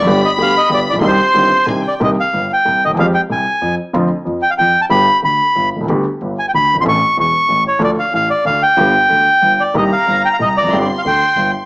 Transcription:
<<
  \new Staff \with { instrumentName = "Violin section" } { \time 3/4 \key c \minor \tempo 4 = 186 b''2. | c'''2 aes''8 g''8 | r2. | r2. |
r2. | r2. | r2. | r2. |
r2. | r2. | bes''2. | c'''2. | }
  \new Staff \with { instrumentName = "Bandoneon" } { \time 3/4 \key c \minor d''8 ees''8 f''8 ees''8 d''8 d''8 | c''2 r8 d''8 | ees''8 f''4 g''4 ees''8 | f''8 g''8 aes''4. r8 |
r4. g''16 f''16 g''8. a''16 | b''4 b''4. r8 | r4. aes''16 g''16 b''8. c'''16 | cis'''4 cis'''4. cis''8 |
d''8 f''8 f''8 d''8 f''8 g''8~ | g''2~ g''8 d''8 | ees''8 f''4 g''16 f''16 ees''8 d''8~ | d''16 d''8 f''16 g''4. r8 | }
  \new Staff \with { instrumentName = "Upright piano" } { \clef bass \time 3/4 \key c \minor <g,, g, d g b g'>8 r8 <d, d g b g'>8 r8 <g,, g, d g b g'>8 r32 a,,32 bes,,32 b,,32 | <c, c ees c' d' g'>8 r8 <g,, g, ees c' d' g'>8 r8 <c, c ees c' d' g'>8 r8 | <c, c ees bes c' g'>8 r8 <g,, g,>8 r8 <c, c>8 r32 d,32 ees,32 e,32 | <f, f aes c' g'>8 r8 <c, c>8 r8 <f, f>8 r8 |
<f, d f a c' f'>8 r8 <f, f>8 r8 <f, f>8 r8 | <g,, g, d g b g'>8 r8 <d, d>8 r8 <g,, g,>8 r32 b,,32 c,32 des,32 | <d, d g b g'>8 r8 <g,, g,>8 r8 <d, d>8 r32 fis,,32 g,,32 aes,,32 | <a,, a, e a cis' a'>8 r8 <e,, e,>8 r8 <a,, a,>8 r8 |
<d, d f a d' a'>8 r8 <a,, a,>8 r8 <d, d>8 r8 | <g,, g, d g b g'>8 r8 <d, d>8 r8 <g,, g,>8 r8 | <c, c ees bes c' g'>8 r8 <g,, g,>8 r8 <c, c>8 r32 e,32 f,32 fis,32 | <g,, g, d g c' g'>8 r8 <d, d>8 r8 <g,, g,>8 r8 | }
  \new Staff \with { instrumentName = "Upright bass" } { \clef bass \time 3/4 \key c \minor g,,16. r8 r32 d,16. r8 r32 g,,16. r16 a,,32 bes,,32 b,,32 | c,16. r8 r32 g,,16. r8 r32 c,16. r8 r32 | c,16. r8 r32 g,,16. r8 r32 c,16. r16 d,32 ees,32 e,32 | f,16. r8 r32 c,16. r8 r32 f,16. r8 r32 |
f,16. r8 r32 f,16. r8 r32 f,16. r8 r32 | g,,16. r8 r32 d,16. r8 r32 g,,16. r16 b,,32 c,32 des,32 | d,16. r8 r32 g,,16. r8 r32 d,16. r16 fis,,32 g,,32 aes,,32 | a,,16. r8 r32 e,,16. r8 r32 a,,16. r8 r32 |
d,16. r8 r32 a,,16. r8 r32 d,16. r8 r32 | g,,16. r8 r32 d,16. r8 r32 g,,16. r8 r32 | c,16. r8 r32 g,,16. r8 r32 c,16. r16 e,,32 f,,32 fis,,32 | g,,16. r8 r32 d,16. r8 r32 g,,16. r8 r32 | }
>>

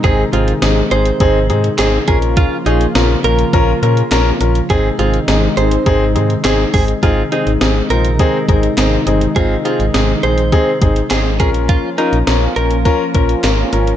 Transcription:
<<
  \new Staff \with { instrumentName = "Clean electric guitar" } { \time 4/4 \key aes \major \tempo 4 = 103 aes'8 f'8 r8 c''4 r8 aes'16 r16 aes'16 r16 | f'8 ees'8 r8 bes'4 r4. | aes'8 f'8 r8 c''4 r8 aes'16 r16 aes'16 r16 | f'8 ees'8 r8 bes'4 r4. |
aes'8 f'8 r8 c''4 r8 aes'16 r16 aes'16 r16 | f'8 ees'8 r8 bes'4 r4. | }
  \new Staff \with { instrumentName = "Grand piano" } { \time 4/4 \key aes \major <c' ees' aes'>8 <c' ees' aes'>8 <c' ees' aes'>8 <c' ees' aes'>8 <c' ees' aes'>8 <c' ees' aes'>8 <c' ees' aes'>8 <des' f' bes'>8~ | <des' f' bes'>8 <des' f' aes'>8 <des' f' bes'>8 <des' f' bes'>8 <des' f' bes'>8 <des' f' bes'>8 <des' f' bes'>8 <des' f' bes'>8 | <c' ees' aes'>8 <c' ees' aes'>8 <c' ees' aes'>8 <c' ees' aes'>8 <c' ees' aes'>8 <c' ees' aes'>8 <c' ees' aes'>8 <c' ees' aes'>8 | <c' ees' aes'>8 <c' ees' aes'>8 <c' ees' aes'>8 <c' ees' f'>8 <c' ees' aes'>8 <c' ees' aes'>8 <c' ees' aes'>8 <c' ees' aes'>8 |
<c' ees' f'>8 <c' ees' aes'>8 <c' ees' aes'>8 <c' ees' aes'>8 <c' ees' aes'>8 <c' ees' aes'>8 <c' ees' aes'>8 <des' f' bes'>8~ | <des' f' bes'>8 <des' f' bes'>8 <des' f' bes'>8 <des' f' bes'>8 <des' f' bes'>8 <des' f' bes'>8 <des' f' bes'>8 <des' f' bes'>8 | }
  \new Staff \with { instrumentName = "Analog synth pad" } { \clef bass \time 4/4 \key aes \major <c ees aes ees'>2.~ <c ees aes ees'>8 <des f bes f'>8~ | <des f bes f'>1 | <c ees aes ees'>1 | <c ees aes ees'>1~ |
<c ees aes ees'>2.~ <c ees aes ees'>8 <f bes des' f'>8~ | <f bes des' f'>1 | }
  \new Staff \with { instrumentName = "FM bass" } { \clef bass \time 4/4 \key aes \major aes,,8 aes,,8 aes,,8 aes,,8 aes,,8 aes,8 aes,,8 bes,,8~ | bes,,8 bes,,8 bes,,8 bes,,8 bes,,8 bes,8 bes,,8 bes,,8 | aes,,8 aes,,8 aes,,8 aes,,8 aes,,8 aes,8 aes,,8 aes,,8 | aes,,8 r16 aes,,16 aes,,8 bes,,8. r16 aes,,8 aes,,8 g,,8 |
aes,,8 r16 aes,,16 aes,,8 bes,,8. r16 aes,,8 aes,,8 bes,,8~ | bes,,8 r16 bes,,16 bes,,8 bes,,8. r16 bes,,8 aes,,8 aes,,8 | }
  \new DrumStaff \with { instrumentName = "Drums" } \drummode { \time 4/4 <hh bd>8 hh16 hh16 <hh sn>8 hh16 hh16 <hh bd>8 hh16 hh16 <hc hh sn>8 <hh bd>16 hh16 | <hh bd>8 hh16 hh16 <hh sn>8 hh16 hh16 <hh bd>8 hh16 hh16 <hc hh sn>8 hh16 hh16 | <hh bd>8 hh16 hh16 <hh sn>8 hh16 hh16 <hh bd>8 hh16 hh16 <hc hh sn>8 <hho bd>16 hh16 | <hh bd>8 hh16 hh16 <hh sn>8 hh16 hh16 <hh bd>8 <hh bd>16 hh16 <hc hh sn>8 hh16 hh16 |
<hh bd>8 hh16 hh16 <hh sn>8 hh16 hh16 <hh bd>8 <hh bd>16 hh16 <hc hh sn>8 <hh bd>16 hh16 | <hh bd>8 hh16 hh16 <hh sn>8 hh16 hh16 <hh bd>8 <hh bd>16 hh16 <hc hh sn>8 hh16 hh16 | }
>>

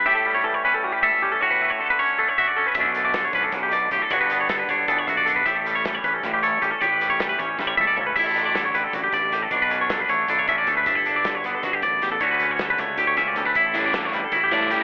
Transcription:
<<
  \new Staff \with { instrumentName = "Clean electric guitar" } { \time 7/8 \key a \mixolydian \tempo 4 = 155 e''16 a'8 cis''16 a'16 cis''16 b'16 a'16 fis'16 g'16 e''8 g'16 a'16 | cis''16 b'8 cis''16 a'16 b'16 cis''8 a'16 cis''16 e''16 d''16 a'16 b'16 | e''16 a'8 d''16 a'16 cis''16 b'16 a'16 fis'16 g'16 d''8 g'16 a'16 | cis''16 b'8 cis''16 a'16 b'16 cis''8 a'16 cis''16 e''16 d''16 a'16 b'16 |
e''16 a'8 cis''16 a'16 cis''16 b'16 a'16 fis'16 g'16 cis''8 g'16 a'16 | cis''16 b'8 cis''16 a'16 b'16 cis''8 a'16 cis''16 e''16 d''16 a'16 b'16 | e''16 a'8 d''16 a'16 cis''16 b'16 a'16 fis'16 g'16 d''8 g'16 a'16 | cis''16 b'8 cis''16 a'16 b'16 cis''8 a'16 cis''16 e''16 d''16 a'16 b'16 |
e''16 a'8 d''16 a'16 cis''16 b'16 a'16 fis'16 g'16 d''8 g'16 a'16 | cis''16 b'8 cis''16 a'16 b'16 cis''8 a'16 cis''16 e''16 d''16 a'16 b'16 | e''16 a'8 d''16 a'16 cis''16 b'16 a'16 fis'16 g'16 d''8 g'16 r16 | }
  \new Staff \with { instrumentName = "Overdriven electric guitar" } { \time 7/8 \key a \mixolydian r2. r8 | r2. r8 | r2. r8 | r2. r8 |
r2. r8 | r2. r8 | r2. r8 | r2. r8 |
r2. r8 | r2. r8 | r8 <e g cis' e'>8 <e g cis' e'>8 r4 <e g cis' e'>8 <e g cis' e'>8 | }
  \new Staff \with { instrumentName = "Clean electric guitar" } { \time 7/8 \key a \mixolydian << { g'8 g4 cis'8 g8 a'8 cis'8 | fis'8 a4 cis'8 a8 fis'8 cis'8 | <d a cis' d'>8 a4 cis'2 | <d b d' fis'>8 b4 d'8 b8 fis'8 d'8 |
g'8 g4 cis'8 g8 a'8 cis'8 | g'8 g4 cis'8 g8 a'8 cis'8 | e'8 d'4 g2 | d'8 cis'4 a8 d'8 cis'8 a8 |
d'16 e'16 d'4 b2 | <d a cis' fis'>8 cis'4 a8 g'8 cis'8 g16 a16 | e'8 d'4 g8 e'8 d'8 g8 | } \\ { a,4 e2~ e8 | a,4 d2~ d8 | b,4 d4 cis8 b,8 a,8 | g,4 d2~ d8 |
a,4 e2~ e8 | a,4 e2~ e8 | a,4 d4 fis,8 g,8 a,8 | b,4 d2~ d8 |
g,4 d4 g,8 fis,8 e,8 | d,4 d2~ d8 | a,4 d2~ d8 | } >> }
  \new Staff \with { instrumentName = "Fingered electric bass" } { \clef bass \time 7/8 \key a \mixolydian r2. r8 | r2. r8 | b,,4. b,,8 b,,4 b,,16 r16 | g,,4. g,,8 g,,8 b,,4 |
a,,4. a,,8 a,,4 a,,16 r16 | a,,4. a,,8 a,,8 cis,4 | a,,2 a,,8 a,,4 | b,,4. a,,8 b,,8 a,,8 d,8 |
g,,2 g,,8 a,,4 | d,4. cis,8 d,8 cis,8 d,8 | a,,2 a,,8 a,4 | }
  \new DrumStaff \with { instrumentName = "Drums" } \drummode { \time 7/8 r4 r4 r4. | r4 r4 r4. | <hh bd>8 hh8 <hh sn>8 <hh bd>8 <hh bd sn>8 hh8 <hh bd>8 | <hh bd>8 hh8 <hh sn>8 <hh bd>8 <hh bd>8 <hh bd>8 hh8 |
<hh bd>8 hh8 <hh sn>8 <hh bd>8 <hh bd sn>8 hh8 <hh bd>8 | <hh bd>8 hh8 <hh sn>8 <hh bd>8 <bd sn>8 toml8 tomfh8 | <cymc bd>8 hh8 <hh sn>8 hh8 <hh bd>8 <hh bd>8 hh8 | <hh bd>8 hh8 <hh sn>8 <hh bd>8 <hh bd>8 <hh bd>8 <hh bd>8 |
<hh bd>8 hh8 <hh sn>8 <hh sn>8 <hh bd sn>8 <hh bd>8 <hh sn>8 | <hh bd>8 hh8 <hh sn>8 <hh bd sn>8 <hh bd sn>8 <hh bd sn>8 <hh bd sn>8 | <hh bd>8 hh8 <hh sn>8 hh8 <hh bd>8 <hh bd>8 hh8 | }
>>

